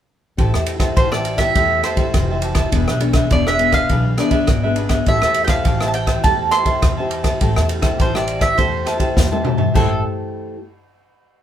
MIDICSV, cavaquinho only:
0, 0, Header, 1, 3, 480
1, 0, Start_track
1, 0, Key_signature, 0, "minor"
1, 0, Tempo, 585938
1, 313, Time_signature, 4, 2, 24, 8
1, 9363, End_track
2, 0, Start_track
2, 0, Title_t, "Cavaquinho"
2, 0, Program_c, 0, 24
2, 314, Note_on_c, 0, 67, 50
2, 320, Note_on_c, 0, 72, 46
2, 322, Note_on_c, 0, 76, 52
2, 329, Note_on_c, 0, 81, 52
2, 424, Note_off_c, 0, 67, 0
2, 427, Note_off_c, 0, 72, 0
2, 428, Note_off_c, 0, 76, 0
2, 431, Note_off_c, 0, 81, 0
2, 441, Note_on_c, 0, 81, 61
2, 451, Note_on_c, 0, 76, 55
2, 455, Note_on_c, 0, 72, 47
2, 541, Note_off_c, 0, 72, 0
2, 541, Note_off_c, 0, 81, 0
2, 543, Note_off_c, 0, 76, 0
2, 651, Note_on_c, 0, 81, 64
2, 658, Note_on_c, 0, 76, 53
2, 666, Note_on_c, 0, 72, 50
2, 773, Note_off_c, 0, 81, 0
2, 776, Note_off_c, 0, 76, 0
2, 780, Note_off_c, 0, 72, 0
2, 798, Note_on_c, 0, 67, 44
2, 804, Note_on_c, 0, 72, 43
2, 807, Note_on_c, 0, 76, 45
2, 812, Note_on_c, 0, 81, 56
2, 906, Note_off_c, 0, 67, 0
2, 909, Note_off_c, 0, 72, 0
2, 911, Note_off_c, 0, 76, 0
2, 913, Note_off_c, 0, 81, 0
2, 924, Note_on_c, 0, 81, 61
2, 934, Note_on_c, 0, 76, 55
2, 942, Note_on_c, 0, 72, 49
2, 1129, Note_off_c, 0, 81, 0
2, 1138, Note_off_c, 0, 76, 0
2, 1138, Note_on_c, 0, 81, 54
2, 1141, Note_off_c, 0, 72, 0
2, 1147, Note_on_c, 0, 76, 48
2, 1151, Note_on_c, 0, 72, 45
2, 1257, Note_off_c, 0, 81, 0
2, 1261, Note_off_c, 0, 76, 0
2, 1263, Note_off_c, 0, 72, 0
2, 1278, Note_on_c, 0, 67, 50
2, 1286, Note_on_c, 0, 72, 49
2, 1292, Note_on_c, 0, 76, 46
2, 1294, Note_on_c, 0, 81, 49
2, 1386, Note_off_c, 0, 67, 0
2, 1390, Note_off_c, 0, 72, 0
2, 1393, Note_off_c, 0, 76, 0
2, 1394, Note_off_c, 0, 81, 0
2, 1505, Note_on_c, 0, 67, 64
2, 1513, Note_on_c, 0, 72, 76
2, 1518, Note_on_c, 0, 76, 75
2, 1523, Note_on_c, 0, 81, 78
2, 1606, Note_off_c, 0, 81, 0
2, 1613, Note_off_c, 0, 76, 0
2, 1615, Note_on_c, 0, 81, 62
2, 1618, Note_off_c, 0, 72, 0
2, 1620, Note_off_c, 0, 67, 0
2, 1622, Note_on_c, 0, 76, 58
2, 1628, Note_on_c, 0, 72, 57
2, 1855, Note_off_c, 0, 81, 0
2, 1859, Note_off_c, 0, 76, 0
2, 1862, Note_off_c, 0, 72, 0
2, 1887, Note_on_c, 0, 81, 61
2, 1895, Note_on_c, 0, 76, 57
2, 1903, Note_on_c, 0, 72, 51
2, 1980, Note_off_c, 0, 72, 0
2, 1986, Note_off_c, 0, 76, 0
2, 1987, Note_on_c, 0, 67, 41
2, 1990, Note_on_c, 0, 72, 46
2, 1991, Note_off_c, 0, 81, 0
2, 1996, Note_on_c, 0, 76, 43
2, 2001, Note_on_c, 0, 81, 53
2, 2091, Note_off_c, 0, 81, 0
2, 2098, Note_off_c, 0, 76, 0
2, 2101, Note_off_c, 0, 67, 0
2, 2101, Note_on_c, 0, 81, 56
2, 2103, Note_off_c, 0, 72, 0
2, 2108, Note_on_c, 0, 76, 58
2, 2114, Note_on_c, 0, 72, 47
2, 2218, Note_off_c, 0, 81, 0
2, 2222, Note_off_c, 0, 76, 0
2, 2225, Note_off_c, 0, 72, 0
2, 2243, Note_on_c, 0, 62, 45
2, 2249, Note_on_c, 0, 68, 45
2, 2252, Note_on_c, 0, 71, 49
2, 2256, Note_on_c, 0, 76, 53
2, 2349, Note_off_c, 0, 62, 0
2, 2352, Note_off_c, 0, 68, 0
2, 2353, Note_off_c, 0, 71, 0
2, 2356, Note_off_c, 0, 76, 0
2, 2365, Note_on_c, 0, 76, 61
2, 2374, Note_on_c, 0, 71, 58
2, 2382, Note_on_c, 0, 68, 50
2, 2463, Note_off_c, 0, 68, 0
2, 2466, Note_off_c, 0, 71, 0
2, 2466, Note_off_c, 0, 76, 0
2, 2576, Note_on_c, 0, 76, 61
2, 2583, Note_on_c, 0, 71, 57
2, 2590, Note_on_c, 0, 68, 51
2, 2696, Note_off_c, 0, 76, 0
2, 2699, Note_off_c, 0, 71, 0
2, 2703, Note_off_c, 0, 68, 0
2, 2718, Note_on_c, 0, 62, 47
2, 2721, Note_on_c, 0, 68, 54
2, 2728, Note_on_c, 0, 71, 54
2, 2731, Note_on_c, 0, 76, 55
2, 2827, Note_off_c, 0, 62, 0
2, 2828, Note_off_c, 0, 68, 0
2, 2828, Note_off_c, 0, 76, 0
2, 2831, Note_off_c, 0, 71, 0
2, 2838, Note_on_c, 0, 76, 60
2, 2846, Note_on_c, 0, 71, 59
2, 2854, Note_on_c, 0, 68, 52
2, 3043, Note_off_c, 0, 76, 0
2, 3050, Note_off_c, 0, 71, 0
2, 3053, Note_on_c, 0, 76, 57
2, 3058, Note_off_c, 0, 68, 0
2, 3059, Note_on_c, 0, 71, 52
2, 3068, Note_on_c, 0, 68, 50
2, 3174, Note_off_c, 0, 76, 0
2, 3177, Note_off_c, 0, 71, 0
2, 3182, Note_off_c, 0, 68, 0
2, 3196, Note_on_c, 0, 62, 52
2, 3201, Note_on_c, 0, 68, 48
2, 3206, Note_on_c, 0, 71, 60
2, 3208, Note_on_c, 0, 76, 58
2, 3306, Note_off_c, 0, 62, 0
2, 3308, Note_off_c, 0, 68, 0
2, 3311, Note_off_c, 0, 71, 0
2, 3312, Note_off_c, 0, 76, 0
2, 3424, Note_on_c, 0, 62, 76
2, 3430, Note_on_c, 0, 68, 78
2, 3438, Note_on_c, 0, 71, 80
2, 3442, Note_on_c, 0, 76, 80
2, 3519, Note_off_c, 0, 76, 0
2, 3528, Note_off_c, 0, 71, 0
2, 3529, Note_on_c, 0, 76, 74
2, 3537, Note_off_c, 0, 68, 0
2, 3538, Note_on_c, 0, 71, 64
2, 3540, Note_off_c, 0, 62, 0
2, 3547, Note_on_c, 0, 68, 58
2, 3772, Note_off_c, 0, 76, 0
2, 3776, Note_off_c, 0, 71, 0
2, 3781, Note_off_c, 0, 68, 0
2, 3795, Note_on_c, 0, 76, 61
2, 3801, Note_on_c, 0, 71, 62
2, 3809, Note_on_c, 0, 68, 54
2, 3897, Note_off_c, 0, 68, 0
2, 3897, Note_on_c, 0, 62, 42
2, 3900, Note_off_c, 0, 71, 0
2, 3905, Note_off_c, 0, 76, 0
2, 3907, Note_on_c, 0, 68, 49
2, 3910, Note_on_c, 0, 71, 56
2, 3916, Note_on_c, 0, 76, 47
2, 4001, Note_off_c, 0, 76, 0
2, 4010, Note_off_c, 0, 71, 0
2, 4010, Note_on_c, 0, 76, 61
2, 4016, Note_off_c, 0, 62, 0
2, 4016, Note_off_c, 0, 68, 0
2, 4020, Note_on_c, 0, 71, 55
2, 4026, Note_on_c, 0, 68, 49
2, 4132, Note_off_c, 0, 76, 0
2, 4137, Note_off_c, 0, 71, 0
2, 4140, Note_off_c, 0, 68, 0
2, 4155, Note_on_c, 0, 67, 47
2, 4161, Note_on_c, 0, 72, 49
2, 4166, Note_on_c, 0, 76, 53
2, 4170, Note_on_c, 0, 81, 51
2, 4265, Note_off_c, 0, 67, 0
2, 4268, Note_off_c, 0, 72, 0
2, 4270, Note_off_c, 0, 76, 0
2, 4272, Note_off_c, 0, 81, 0
2, 4280, Note_on_c, 0, 81, 68
2, 4291, Note_on_c, 0, 76, 66
2, 4296, Note_on_c, 0, 72, 51
2, 4379, Note_off_c, 0, 72, 0
2, 4380, Note_off_c, 0, 76, 0
2, 4383, Note_off_c, 0, 81, 0
2, 4492, Note_on_c, 0, 81, 61
2, 4498, Note_on_c, 0, 76, 59
2, 4506, Note_on_c, 0, 72, 51
2, 4613, Note_off_c, 0, 81, 0
2, 4616, Note_off_c, 0, 76, 0
2, 4620, Note_off_c, 0, 72, 0
2, 4631, Note_on_c, 0, 67, 48
2, 4638, Note_on_c, 0, 72, 51
2, 4641, Note_on_c, 0, 76, 45
2, 4646, Note_on_c, 0, 81, 55
2, 4742, Note_off_c, 0, 67, 0
2, 4746, Note_off_c, 0, 72, 0
2, 4746, Note_off_c, 0, 81, 0
2, 4748, Note_off_c, 0, 76, 0
2, 4756, Note_on_c, 0, 81, 67
2, 4765, Note_on_c, 0, 76, 60
2, 4771, Note_on_c, 0, 72, 54
2, 4956, Note_off_c, 0, 81, 0
2, 4966, Note_on_c, 0, 81, 66
2, 4967, Note_off_c, 0, 76, 0
2, 4972, Note_off_c, 0, 72, 0
2, 4977, Note_on_c, 0, 76, 55
2, 4982, Note_on_c, 0, 72, 49
2, 5090, Note_off_c, 0, 81, 0
2, 5095, Note_off_c, 0, 76, 0
2, 5098, Note_off_c, 0, 72, 0
2, 5109, Note_on_c, 0, 67, 50
2, 5116, Note_on_c, 0, 72, 55
2, 5120, Note_on_c, 0, 76, 54
2, 5124, Note_on_c, 0, 81, 49
2, 5221, Note_off_c, 0, 67, 0
2, 5225, Note_off_c, 0, 72, 0
2, 5227, Note_off_c, 0, 76, 0
2, 5229, Note_off_c, 0, 81, 0
2, 5332, Note_on_c, 0, 67, 72
2, 5335, Note_on_c, 0, 72, 77
2, 5339, Note_on_c, 0, 76, 71
2, 5347, Note_on_c, 0, 81, 85
2, 5434, Note_off_c, 0, 81, 0
2, 5444, Note_off_c, 0, 76, 0
2, 5444, Note_on_c, 0, 81, 69
2, 5449, Note_off_c, 0, 72, 0
2, 5453, Note_off_c, 0, 67, 0
2, 5454, Note_on_c, 0, 76, 64
2, 5459, Note_on_c, 0, 72, 57
2, 5689, Note_off_c, 0, 81, 0
2, 5694, Note_off_c, 0, 76, 0
2, 5696, Note_off_c, 0, 72, 0
2, 5713, Note_on_c, 0, 81, 65
2, 5722, Note_on_c, 0, 76, 60
2, 5730, Note_on_c, 0, 72, 52
2, 5813, Note_off_c, 0, 72, 0
2, 5815, Note_on_c, 0, 67, 41
2, 5817, Note_off_c, 0, 76, 0
2, 5822, Note_on_c, 0, 72, 45
2, 5823, Note_off_c, 0, 81, 0
2, 5827, Note_on_c, 0, 76, 46
2, 5833, Note_on_c, 0, 81, 53
2, 5913, Note_off_c, 0, 81, 0
2, 5921, Note_off_c, 0, 76, 0
2, 5923, Note_on_c, 0, 81, 64
2, 5926, Note_off_c, 0, 72, 0
2, 5930, Note_on_c, 0, 76, 60
2, 5934, Note_off_c, 0, 67, 0
2, 5936, Note_on_c, 0, 72, 49
2, 6048, Note_off_c, 0, 81, 0
2, 6052, Note_off_c, 0, 76, 0
2, 6054, Note_off_c, 0, 72, 0
2, 6068, Note_on_c, 0, 67, 49
2, 6072, Note_on_c, 0, 72, 54
2, 6081, Note_on_c, 0, 76, 49
2, 6085, Note_on_c, 0, 81, 56
2, 6180, Note_off_c, 0, 67, 0
2, 6182, Note_off_c, 0, 81, 0
2, 6183, Note_off_c, 0, 72, 0
2, 6187, Note_off_c, 0, 76, 0
2, 6192, Note_on_c, 0, 81, 64
2, 6199, Note_on_c, 0, 76, 61
2, 6204, Note_on_c, 0, 72, 53
2, 6284, Note_off_c, 0, 72, 0
2, 6290, Note_off_c, 0, 81, 0
2, 6291, Note_off_c, 0, 76, 0
2, 6402, Note_on_c, 0, 81, 59
2, 6408, Note_on_c, 0, 76, 63
2, 6417, Note_on_c, 0, 72, 50
2, 6527, Note_off_c, 0, 81, 0
2, 6530, Note_off_c, 0, 76, 0
2, 6535, Note_off_c, 0, 72, 0
2, 6538, Note_on_c, 0, 67, 50
2, 6545, Note_on_c, 0, 72, 51
2, 6551, Note_on_c, 0, 76, 49
2, 6556, Note_on_c, 0, 81, 52
2, 6652, Note_off_c, 0, 81, 0
2, 6656, Note_off_c, 0, 67, 0
2, 6659, Note_off_c, 0, 72, 0
2, 6662, Note_off_c, 0, 76, 0
2, 6662, Note_on_c, 0, 81, 62
2, 6673, Note_on_c, 0, 76, 62
2, 6678, Note_on_c, 0, 72, 55
2, 6866, Note_off_c, 0, 81, 0
2, 6876, Note_on_c, 0, 81, 63
2, 6877, Note_off_c, 0, 76, 0
2, 6879, Note_off_c, 0, 72, 0
2, 6886, Note_on_c, 0, 76, 45
2, 6889, Note_on_c, 0, 72, 44
2, 7004, Note_off_c, 0, 81, 0
2, 7010, Note_off_c, 0, 76, 0
2, 7011, Note_off_c, 0, 72, 0
2, 7021, Note_on_c, 0, 67, 50
2, 7028, Note_on_c, 0, 72, 52
2, 7032, Note_on_c, 0, 76, 52
2, 7037, Note_on_c, 0, 81, 50
2, 7137, Note_off_c, 0, 67, 0
2, 7141, Note_off_c, 0, 72, 0
2, 7143, Note_off_c, 0, 76, 0
2, 7145, Note_off_c, 0, 81, 0
2, 7249, Note_on_c, 0, 67, 67
2, 7253, Note_on_c, 0, 72, 69
2, 7261, Note_on_c, 0, 76, 78
2, 7267, Note_on_c, 0, 81, 89
2, 7347, Note_off_c, 0, 81, 0
2, 7356, Note_on_c, 0, 81, 74
2, 7358, Note_off_c, 0, 76, 0
2, 7367, Note_off_c, 0, 72, 0
2, 7368, Note_on_c, 0, 76, 62
2, 7371, Note_off_c, 0, 67, 0
2, 7377, Note_on_c, 0, 72, 58
2, 7605, Note_off_c, 0, 81, 0
2, 7611, Note_off_c, 0, 76, 0
2, 7615, Note_off_c, 0, 72, 0
2, 7633, Note_on_c, 0, 81, 60
2, 7639, Note_on_c, 0, 76, 62
2, 7647, Note_on_c, 0, 72, 53
2, 7726, Note_off_c, 0, 72, 0
2, 7728, Note_on_c, 0, 67, 43
2, 7730, Note_off_c, 0, 76, 0
2, 7736, Note_on_c, 0, 72, 45
2, 7737, Note_off_c, 0, 81, 0
2, 7740, Note_on_c, 0, 76, 46
2, 7747, Note_on_c, 0, 81, 48
2, 7833, Note_off_c, 0, 81, 0
2, 7839, Note_off_c, 0, 76, 0
2, 7843, Note_on_c, 0, 81, 69
2, 7845, Note_off_c, 0, 72, 0
2, 7848, Note_on_c, 0, 76, 52
2, 7850, Note_off_c, 0, 67, 0
2, 7855, Note_on_c, 0, 72, 48
2, 7968, Note_off_c, 0, 81, 0
2, 7971, Note_off_c, 0, 76, 0
2, 7974, Note_off_c, 0, 72, 0
2, 7980, Note_on_c, 0, 67, 68
2, 7985, Note_on_c, 0, 72, 65
2, 7989, Note_on_c, 0, 76, 70
2, 7995, Note_on_c, 0, 81, 69
2, 8178, Note_off_c, 0, 67, 0
2, 8181, Note_off_c, 0, 72, 0
2, 8183, Note_off_c, 0, 76, 0
2, 8186, Note_off_c, 0, 81, 0
2, 9363, End_track
3, 0, Start_track
3, 0, Title_t, "Muted cavaquinho strokes"
3, 546, Note_on_c, 9, 29, 31
3, 628, Note_off_c, 9, 29, 0
3, 1410, Note_on_c, 9, 29, 34
3, 1492, Note_off_c, 9, 29, 0
3, 2472, Note_on_c, 9, 29, 38
3, 2553, Note_off_c, 9, 29, 0
3, 3326, Note_on_c, 9, 29, 30
3, 3408, Note_off_c, 9, 29, 0
3, 4386, Note_on_c, 9, 29, 39
3, 4468, Note_off_c, 9, 29, 0
3, 5237, Note_on_c, 9, 29, 30
3, 5319, Note_off_c, 9, 29, 0
3, 6294, Note_on_c, 9, 29, 38
3, 6376, Note_off_c, 9, 29, 0
3, 7152, Note_on_c, 9, 29, 32
3, 7233, Note_off_c, 9, 29, 0
3, 9363, End_track
0, 0, End_of_file